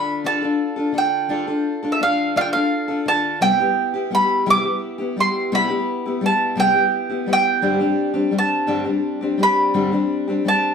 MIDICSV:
0, 0, Header, 1, 3, 480
1, 0, Start_track
1, 0, Key_signature, 0, "major"
1, 0, Tempo, 704225
1, 881, Time_signature, 6, 3, 24, 8
1, 7323, End_track
2, 0, Start_track
2, 0, Title_t, "Mandolin"
2, 0, Program_c, 0, 25
2, 0, Note_on_c, 0, 83, 75
2, 177, Note_off_c, 0, 83, 0
2, 180, Note_on_c, 0, 81, 72
2, 623, Note_off_c, 0, 81, 0
2, 667, Note_on_c, 0, 79, 71
2, 1306, Note_off_c, 0, 79, 0
2, 1309, Note_on_c, 0, 76, 52
2, 1358, Note_off_c, 0, 76, 0
2, 1382, Note_on_c, 0, 77, 72
2, 1609, Note_off_c, 0, 77, 0
2, 1617, Note_on_c, 0, 77, 74
2, 1640, Note_off_c, 0, 77, 0
2, 1642, Note_on_c, 0, 79, 60
2, 1693, Note_off_c, 0, 79, 0
2, 1723, Note_on_c, 0, 77, 72
2, 2098, Note_off_c, 0, 77, 0
2, 2101, Note_on_c, 0, 81, 82
2, 2328, Note_off_c, 0, 81, 0
2, 2331, Note_on_c, 0, 79, 86
2, 2818, Note_off_c, 0, 79, 0
2, 2826, Note_on_c, 0, 83, 81
2, 3059, Note_off_c, 0, 83, 0
2, 3070, Note_on_c, 0, 86, 94
2, 3545, Note_off_c, 0, 86, 0
2, 3547, Note_on_c, 0, 84, 79
2, 3779, Note_off_c, 0, 84, 0
2, 3783, Note_on_c, 0, 83, 84
2, 4263, Note_off_c, 0, 83, 0
2, 4266, Note_on_c, 0, 81, 76
2, 4494, Note_off_c, 0, 81, 0
2, 4497, Note_on_c, 0, 79, 78
2, 4982, Note_off_c, 0, 79, 0
2, 4995, Note_on_c, 0, 79, 76
2, 5712, Note_off_c, 0, 79, 0
2, 5715, Note_on_c, 0, 81, 76
2, 6424, Note_off_c, 0, 81, 0
2, 6427, Note_on_c, 0, 83, 73
2, 7143, Note_off_c, 0, 83, 0
2, 7145, Note_on_c, 0, 81, 75
2, 7323, Note_off_c, 0, 81, 0
2, 7323, End_track
3, 0, Start_track
3, 0, Title_t, "Steel-string acoustic guitar"
3, 0, Program_c, 1, 25
3, 0, Note_on_c, 1, 50, 45
3, 0, Note_on_c, 1, 62, 44
3, 0, Note_on_c, 1, 65, 53
3, 0, Note_on_c, 1, 69, 50
3, 159, Note_off_c, 1, 50, 0
3, 162, Note_off_c, 1, 62, 0
3, 166, Note_off_c, 1, 65, 0
3, 167, Note_on_c, 1, 50, 65
3, 168, Note_off_c, 1, 69, 0
3, 172, Note_on_c, 1, 62, 62
3, 174, Note_on_c, 1, 65, 62
3, 177, Note_on_c, 1, 69, 67
3, 275, Note_off_c, 1, 69, 0
3, 283, Note_off_c, 1, 65, 0
3, 284, Note_off_c, 1, 50, 0
3, 284, Note_on_c, 1, 69, 45
3, 287, Note_off_c, 1, 62, 0
3, 292, Note_on_c, 1, 65, 41
3, 299, Note_on_c, 1, 62, 36
3, 510, Note_off_c, 1, 69, 0
3, 518, Note_on_c, 1, 69, 43
3, 520, Note_off_c, 1, 65, 0
3, 524, Note_off_c, 1, 62, 0
3, 528, Note_on_c, 1, 65, 38
3, 533, Note_on_c, 1, 62, 37
3, 630, Note_off_c, 1, 62, 0
3, 630, Note_on_c, 1, 50, 41
3, 639, Note_off_c, 1, 65, 0
3, 639, Note_on_c, 1, 62, 49
3, 640, Note_off_c, 1, 69, 0
3, 647, Note_on_c, 1, 65, 49
3, 648, Note_on_c, 1, 69, 51
3, 871, Note_off_c, 1, 50, 0
3, 875, Note_off_c, 1, 62, 0
3, 876, Note_off_c, 1, 65, 0
3, 879, Note_on_c, 1, 50, 64
3, 883, Note_on_c, 1, 62, 69
3, 884, Note_off_c, 1, 69, 0
3, 884, Note_on_c, 1, 65, 67
3, 893, Note_on_c, 1, 69, 70
3, 994, Note_off_c, 1, 69, 0
3, 1000, Note_off_c, 1, 50, 0
3, 1000, Note_off_c, 1, 65, 0
3, 1002, Note_off_c, 1, 62, 0
3, 1002, Note_on_c, 1, 69, 51
3, 1008, Note_on_c, 1, 65, 44
3, 1019, Note_on_c, 1, 62, 39
3, 1236, Note_off_c, 1, 69, 0
3, 1242, Note_off_c, 1, 65, 0
3, 1245, Note_on_c, 1, 69, 48
3, 1249, Note_off_c, 1, 62, 0
3, 1251, Note_on_c, 1, 65, 40
3, 1257, Note_on_c, 1, 62, 37
3, 1360, Note_off_c, 1, 62, 0
3, 1362, Note_off_c, 1, 69, 0
3, 1365, Note_off_c, 1, 65, 0
3, 1366, Note_on_c, 1, 50, 47
3, 1368, Note_on_c, 1, 62, 51
3, 1374, Note_on_c, 1, 65, 48
3, 1383, Note_on_c, 1, 69, 58
3, 1599, Note_off_c, 1, 50, 0
3, 1600, Note_off_c, 1, 62, 0
3, 1604, Note_off_c, 1, 65, 0
3, 1608, Note_on_c, 1, 50, 57
3, 1609, Note_on_c, 1, 62, 73
3, 1611, Note_off_c, 1, 69, 0
3, 1613, Note_on_c, 1, 65, 69
3, 1619, Note_on_c, 1, 69, 64
3, 1723, Note_off_c, 1, 69, 0
3, 1724, Note_off_c, 1, 50, 0
3, 1724, Note_off_c, 1, 62, 0
3, 1726, Note_off_c, 1, 65, 0
3, 1731, Note_on_c, 1, 69, 48
3, 1740, Note_on_c, 1, 65, 46
3, 1743, Note_on_c, 1, 62, 42
3, 1954, Note_off_c, 1, 69, 0
3, 1962, Note_on_c, 1, 69, 45
3, 1969, Note_off_c, 1, 65, 0
3, 1971, Note_off_c, 1, 62, 0
3, 1976, Note_on_c, 1, 65, 40
3, 1981, Note_on_c, 1, 62, 38
3, 2081, Note_off_c, 1, 69, 0
3, 2084, Note_on_c, 1, 50, 49
3, 2088, Note_off_c, 1, 65, 0
3, 2089, Note_off_c, 1, 62, 0
3, 2097, Note_on_c, 1, 62, 53
3, 2103, Note_on_c, 1, 65, 55
3, 2105, Note_on_c, 1, 69, 55
3, 2321, Note_off_c, 1, 50, 0
3, 2323, Note_on_c, 1, 48, 64
3, 2324, Note_off_c, 1, 62, 0
3, 2327, Note_off_c, 1, 69, 0
3, 2327, Note_on_c, 1, 55, 69
3, 2327, Note_on_c, 1, 59, 68
3, 2329, Note_on_c, 1, 67, 61
3, 2331, Note_off_c, 1, 65, 0
3, 2333, Note_on_c, 1, 64, 73
3, 2439, Note_off_c, 1, 67, 0
3, 2441, Note_off_c, 1, 48, 0
3, 2443, Note_off_c, 1, 55, 0
3, 2443, Note_off_c, 1, 59, 0
3, 2446, Note_off_c, 1, 64, 0
3, 2447, Note_on_c, 1, 67, 48
3, 2453, Note_on_c, 1, 64, 45
3, 2460, Note_on_c, 1, 59, 43
3, 2675, Note_off_c, 1, 67, 0
3, 2684, Note_on_c, 1, 67, 50
3, 2686, Note_off_c, 1, 64, 0
3, 2689, Note_off_c, 1, 59, 0
3, 2694, Note_on_c, 1, 64, 41
3, 2696, Note_on_c, 1, 59, 38
3, 2795, Note_off_c, 1, 59, 0
3, 2797, Note_on_c, 1, 55, 47
3, 2801, Note_off_c, 1, 67, 0
3, 2802, Note_off_c, 1, 64, 0
3, 2803, Note_on_c, 1, 59, 52
3, 2810, Note_on_c, 1, 64, 54
3, 2813, Note_on_c, 1, 67, 57
3, 3033, Note_off_c, 1, 55, 0
3, 3033, Note_off_c, 1, 59, 0
3, 3037, Note_off_c, 1, 64, 0
3, 3038, Note_off_c, 1, 67, 0
3, 3038, Note_on_c, 1, 48, 61
3, 3041, Note_on_c, 1, 55, 69
3, 3041, Note_on_c, 1, 59, 67
3, 3045, Note_on_c, 1, 64, 79
3, 3046, Note_on_c, 1, 67, 79
3, 3153, Note_off_c, 1, 67, 0
3, 3158, Note_off_c, 1, 48, 0
3, 3158, Note_off_c, 1, 64, 0
3, 3159, Note_off_c, 1, 59, 0
3, 3160, Note_off_c, 1, 55, 0
3, 3161, Note_on_c, 1, 67, 45
3, 3167, Note_on_c, 1, 64, 46
3, 3174, Note_on_c, 1, 59, 36
3, 3387, Note_off_c, 1, 67, 0
3, 3396, Note_on_c, 1, 67, 48
3, 3397, Note_off_c, 1, 64, 0
3, 3405, Note_on_c, 1, 64, 38
3, 3406, Note_off_c, 1, 59, 0
3, 3416, Note_on_c, 1, 59, 38
3, 3517, Note_off_c, 1, 67, 0
3, 3518, Note_off_c, 1, 59, 0
3, 3519, Note_on_c, 1, 55, 46
3, 3521, Note_off_c, 1, 64, 0
3, 3526, Note_on_c, 1, 59, 52
3, 3534, Note_on_c, 1, 64, 57
3, 3536, Note_on_c, 1, 67, 60
3, 3753, Note_off_c, 1, 55, 0
3, 3754, Note_off_c, 1, 59, 0
3, 3760, Note_off_c, 1, 67, 0
3, 3760, Note_on_c, 1, 48, 66
3, 3761, Note_off_c, 1, 64, 0
3, 3761, Note_on_c, 1, 55, 60
3, 3763, Note_on_c, 1, 59, 78
3, 3769, Note_on_c, 1, 64, 82
3, 3769, Note_on_c, 1, 67, 73
3, 3867, Note_off_c, 1, 67, 0
3, 3876, Note_on_c, 1, 67, 50
3, 3877, Note_off_c, 1, 64, 0
3, 3879, Note_off_c, 1, 48, 0
3, 3879, Note_off_c, 1, 55, 0
3, 3880, Note_off_c, 1, 59, 0
3, 3885, Note_on_c, 1, 64, 47
3, 3891, Note_on_c, 1, 59, 41
3, 4117, Note_off_c, 1, 67, 0
3, 4122, Note_off_c, 1, 64, 0
3, 4125, Note_off_c, 1, 59, 0
3, 4128, Note_on_c, 1, 67, 45
3, 4132, Note_on_c, 1, 64, 36
3, 4141, Note_on_c, 1, 59, 38
3, 4231, Note_off_c, 1, 59, 0
3, 4233, Note_on_c, 1, 55, 54
3, 4237, Note_off_c, 1, 64, 0
3, 4239, Note_on_c, 1, 59, 50
3, 4243, Note_off_c, 1, 67, 0
3, 4245, Note_on_c, 1, 64, 60
3, 4252, Note_on_c, 1, 67, 49
3, 4468, Note_off_c, 1, 55, 0
3, 4468, Note_off_c, 1, 59, 0
3, 4468, Note_on_c, 1, 48, 64
3, 4471, Note_off_c, 1, 64, 0
3, 4474, Note_off_c, 1, 67, 0
3, 4476, Note_on_c, 1, 55, 66
3, 4477, Note_on_c, 1, 59, 71
3, 4479, Note_on_c, 1, 64, 65
3, 4483, Note_on_c, 1, 67, 71
3, 4586, Note_off_c, 1, 67, 0
3, 4593, Note_off_c, 1, 48, 0
3, 4594, Note_off_c, 1, 64, 0
3, 4594, Note_on_c, 1, 67, 43
3, 4597, Note_off_c, 1, 55, 0
3, 4597, Note_off_c, 1, 59, 0
3, 4602, Note_on_c, 1, 64, 41
3, 4609, Note_on_c, 1, 59, 38
3, 4827, Note_off_c, 1, 67, 0
3, 4832, Note_off_c, 1, 64, 0
3, 4835, Note_on_c, 1, 67, 39
3, 4840, Note_on_c, 1, 64, 41
3, 4841, Note_off_c, 1, 59, 0
3, 4849, Note_on_c, 1, 59, 34
3, 4950, Note_off_c, 1, 59, 0
3, 4951, Note_on_c, 1, 55, 48
3, 4952, Note_off_c, 1, 64, 0
3, 4955, Note_off_c, 1, 67, 0
3, 4959, Note_on_c, 1, 59, 53
3, 4960, Note_on_c, 1, 64, 50
3, 4964, Note_on_c, 1, 67, 54
3, 5186, Note_off_c, 1, 55, 0
3, 5190, Note_on_c, 1, 43, 58
3, 5194, Note_on_c, 1, 55, 70
3, 5197, Note_off_c, 1, 59, 0
3, 5197, Note_on_c, 1, 50, 57
3, 5198, Note_off_c, 1, 64, 0
3, 5198, Note_off_c, 1, 67, 0
3, 5200, Note_on_c, 1, 60, 72
3, 5201, Note_on_c, 1, 62, 65
3, 5206, Note_on_c, 1, 67, 67
3, 5306, Note_off_c, 1, 67, 0
3, 5312, Note_off_c, 1, 62, 0
3, 5314, Note_off_c, 1, 43, 0
3, 5314, Note_on_c, 1, 67, 50
3, 5315, Note_off_c, 1, 60, 0
3, 5316, Note_off_c, 1, 55, 0
3, 5318, Note_off_c, 1, 50, 0
3, 5320, Note_on_c, 1, 62, 47
3, 5323, Note_on_c, 1, 60, 47
3, 5330, Note_on_c, 1, 55, 41
3, 5538, Note_off_c, 1, 62, 0
3, 5538, Note_off_c, 1, 67, 0
3, 5546, Note_off_c, 1, 60, 0
3, 5546, Note_on_c, 1, 62, 44
3, 5546, Note_on_c, 1, 67, 46
3, 5553, Note_off_c, 1, 55, 0
3, 5554, Note_on_c, 1, 60, 40
3, 5561, Note_on_c, 1, 55, 38
3, 5656, Note_off_c, 1, 55, 0
3, 5663, Note_off_c, 1, 60, 0
3, 5664, Note_on_c, 1, 55, 45
3, 5668, Note_off_c, 1, 62, 0
3, 5669, Note_off_c, 1, 67, 0
3, 5671, Note_on_c, 1, 60, 48
3, 5676, Note_on_c, 1, 62, 54
3, 5677, Note_on_c, 1, 67, 49
3, 5904, Note_off_c, 1, 55, 0
3, 5907, Note_on_c, 1, 43, 57
3, 5908, Note_off_c, 1, 62, 0
3, 5909, Note_off_c, 1, 60, 0
3, 5912, Note_off_c, 1, 67, 0
3, 5912, Note_on_c, 1, 50, 62
3, 5912, Note_on_c, 1, 55, 66
3, 5916, Note_on_c, 1, 62, 69
3, 5917, Note_on_c, 1, 60, 74
3, 5920, Note_on_c, 1, 67, 62
3, 6019, Note_off_c, 1, 67, 0
3, 6026, Note_off_c, 1, 62, 0
3, 6027, Note_on_c, 1, 67, 43
3, 6028, Note_off_c, 1, 60, 0
3, 6033, Note_off_c, 1, 43, 0
3, 6034, Note_on_c, 1, 62, 41
3, 6036, Note_off_c, 1, 50, 0
3, 6036, Note_off_c, 1, 55, 0
3, 6036, Note_on_c, 1, 60, 38
3, 6048, Note_on_c, 1, 55, 33
3, 6269, Note_off_c, 1, 67, 0
3, 6277, Note_on_c, 1, 67, 43
3, 6278, Note_off_c, 1, 60, 0
3, 6278, Note_off_c, 1, 62, 0
3, 6284, Note_off_c, 1, 55, 0
3, 6287, Note_on_c, 1, 62, 43
3, 6288, Note_on_c, 1, 60, 43
3, 6295, Note_on_c, 1, 55, 35
3, 6383, Note_off_c, 1, 55, 0
3, 6391, Note_on_c, 1, 55, 49
3, 6392, Note_off_c, 1, 60, 0
3, 6395, Note_off_c, 1, 62, 0
3, 6399, Note_off_c, 1, 67, 0
3, 6400, Note_on_c, 1, 60, 48
3, 6403, Note_on_c, 1, 62, 56
3, 6410, Note_on_c, 1, 67, 53
3, 6632, Note_off_c, 1, 55, 0
3, 6636, Note_off_c, 1, 60, 0
3, 6638, Note_off_c, 1, 62, 0
3, 6638, Note_on_c, 1, 43, 60
3, 6640, Note_on_c, 1, 50, 69
3, 6640, Note_on_c, 1, 55, 67
3, 6643, Note_off_c, 1, 67, 0
3, 6645, Note_on_c, 1, 60, 65
3, 6646, Note_on_c, 1, 62, 64
3, 6651, Note_on_c, 1, 67, 64
3, 6752, Note_off_c, 1, 67, 0
3, 6758, Note_off_c, 1, 62, 0
3, 6760, Note_off_c, 1, 43, 0
3, 6760, Note_on_c, 1, 67, 45
3, 6761, Note_off_c, 1, 50, 0
3, 6761, Note_off_c, 1, 55, 0
3, 6761, Note_off_c, 1, 60, 0
3, 6766, Note_on_c, 1, 62, 45
3, 6769, Note_on_c, 1, 60, 41
3, 6774, Note_on_c, 1, 55, 38
3, 6996, Note_off_c, 1, 67, 0
3, 7002, Note_off_c, 1, 62, 0
3, 7004, Note_on_c, 1, 67, 42
3, 7006, Note_off_c, 1, 60, 0
3, 7009, Note_off_c, 1, 55, 0
3, 7010, Note_on_c, 1, 62, 44
3, 7017, Note_on_c, 1, 60, 41
3, 7020, Note_on_c, 1, 55, 38
3, 7112, Note_off_c, 1, 55, 0
3, 7119, Note_off_c, 1, 60, 0
3, 7120, Note_on_c, 1, 55, 44
3, 7123, Note_off_c, 1, 67, 0
3, 7125, Note_off_c, 1, 62, 0
3, 7128, Note_on_c, 1, 60, 50
3, 7133, Note_on_c, 1, 62, 55
3, 7136, Note_on_c, 1, 67, 54
3, 7323, Note_off_c, 1, 55, 0
3, 7323, Note_off_c, 1, 60, 0
3, 7323, Note_off_c, 1, 62, 0
3, 7323, Note_off_c, 1, 67, 0
3, 7323, End_track
0, 0, End_of_file